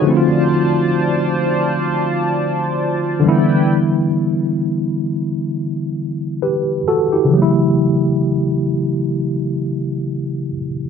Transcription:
0.00 3.18 D3 medium
0.00 3.19 F3 medium
0.00 0.28 D#4 medium
0.00 0.28 F#4 medium
0.05 3.20 A3 medium
0.05 3.21 C4 medium
0.05 3.20 F4 medium
0.05 3.20 C5 medium
0.05 3.20 D5 medium
0.05 3.20 A5 medium
0.10 0.15 E4 medium
0.17 3.25 F4 medium
3.20 6.81 D3 medium
3.20 6.82 E3 medium
3.20 3.68 E4 medium
3.20 3.68 B4 medium
3.20 3.68 D5 medium
3.20 3.68 G5 medium
3.24 6.83 G3 medium
3.24 6.84 B3 medium
3.28 6.40 E4 medium
6.42 6.85 G4 soft
6.42 6.85 B4 medium
6.88 7.11 F#4 medium
6.88 7.11 A4 medium
7.12 7.41 E4 soft
7.12 7.55 G4 medium
7.25 10.50 C#3 medium
7.29 10.55 E3 medium
7.33 10.59 F#3 medium
7.37 10.63 A3 medium
7.42 10.68 E4 medium

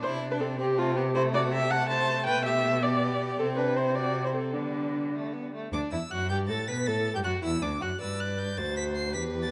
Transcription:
0.00 2.28 C3 medium
0.00 0.59 D4 medium
0.00 0.31 E4 loud
0.00 0.11 C5 loud
0.31 0.42 D4 medium
0.31 0.35 B4 loud
0.40 0.58 C4 medium
0.40 0.47 A4 loud
0.58 1.13 C4 medium
0.58 0.66 C4 loud
0.58 0.80 G4 loud
0.77 0.96 A3 loud
0.77 0.98 F4 loud
0.96 1.04 B3 medium
0.96 1.14 G4 loud
1.14 1.69 A3 medium
1.14 1.22 E4 loud
1.14 1.22 C5 loud
1.34 1.54 F#4 medium
1.34 1.41 D5 loud
1.52 1.73 G4 loud
1.52 1.72 E5 loud
1.71 2.83 A3 medium
1.71 1.89 A4 loud
1.71 1.89 F#5 loud
1.89 2.26 C5 loud
1.89 2.26 A5 loud
2.26 3.39 B2 medium
2.26 2.44 B4 loud
2.26 2.45 G5 loud
2.45 2.82 G4 medium
2.45 2.84 E5 loud
2.82 3.39 B3 medium
2.82 3.41 G4 medium
2.82 3.38 D5 loud
3.39 4.56 C3 medium
3.39 4.56 C4 medium
3.39 3.60 C4 loud
3.39 3.46 A4 loud
3.57 3.79 D4 medium
3.57 3.78 B4 loud
3.77 3.96 E4 medium
3.77 3.97 C5 medium
3.95 4.25 F#4 medium
3.95 4.26 D5 medium
4.24 4.30 E4 medium
4.24 4.36 C5 medium
4.34 4.54 C4 medium
4.34 4.56 A4 medium
4.54 5.53 D3 medium
4.54 5.51 G3 medium
4.54 5.13 B3 medium
4.54 5.53 D4 medium
5.14 5.35 A3 medium
5.33 5.53 B3 medium
5.55 5.72 A3 medium
5.72 5.80 D2 medium
5.72 5.91 D4 medium
5.72 5.81 D6 loud
5.92 6.00 E2 medium
5.92 6.00 E4 medium
5.92 6.12 E6 medium
6.11 6.32 F#2 medium
6.11 6.30 F#4 medium
6.11 6.29 F#6 medium
6.29 6.51 G2 medium
6.29 6.38 G4 medium
6.29 6.49 G4 medium
6.29 6.37 G6 loud
6.48 6.68 A2 medium
6.48 6.68 A4 medium
6.48 6.57 A4 medium
6.48 6.69 A6 loud
6.67 6.89 B2 medium
6.67 6.76 B4 medium
6.67 6.89 B4 medium
6.67 6.88 B6 loud
6.86 7.15 A2 medium
6.86 7.14 A4 medium
6.86 7.17 A4 medium
6.86 7.15 A6 loud
7.14 7.24 G2 medium
7.14 7.18 G4 medium
7.14 7.24 G4 medium
7.14 7.19 G6 medium
7.24 7.32 F#2 medium
7.24 7.42 F#4 medium
7.24 7.32 F#4 medium
7.24 7.32 F#6 medium
7.42 7.62 E2 medium
7.42 7.50 E4 medium
7.42 7.64 E4 medium
7.42 7.64 E6 loud
7.62 7.81 D2 medium
7.62 7.70 D4 medium
7.62 7.83 D4 medium
7.62 7.83 D6 medium
7.81 7.89 F#2 medium
7.81 7.89 F#4 medium
7.81 8.01 F#4 medium
7.81 8.00 F#6 medium
8.00 8.60 G2 medium
8.00 8.60 B4 medium
8.00 8.59 D5 medium
8.00 8.21 E6 loud
8.20 8.40 F#6 medium
8.39 8.59 G6 loud
8.57 9.15 D2 medium
8.57 9.15 F#4 medium
8.57 9.14 C5 medium
8.57 8.76 A6 loud
8.77 8.84 B6 loud
8.96 9.13 C7 loud
9.13 9.51 E2 medium
9.13 9.51 G4 medium
9.13 9.51 B4 medium
9.13 9.22 B6 loud
9.42 9.51 A6 loud

